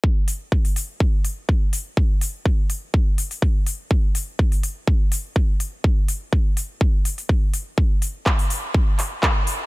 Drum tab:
HH |--o--oo---o---o-|--o---o---oo--o-|--o--oo---o---o-|--o---o---oo--o-|
CP |----------------|----------------|----------------|----------------|
BD |o---o---o---o---|o---o---o---o---|o---o---o---o---|o---o---o---o---|

HH |--o--oo---o---o-|
CP |----x-----x-x---|
BD |o---o---o---o---|